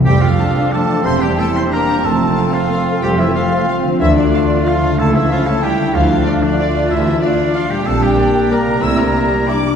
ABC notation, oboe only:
X:1
M:3/4
L:1/8
Q:1/4=184
K:F
V:1 name="Oboe"
G F3 A2 | c G A c B2 | A3 F3 | G E F3 z |
E D3 F2 | A E F A G2 | F3 D3 | E2 D2 F G |
A G3 B2 | e B3 d2 |]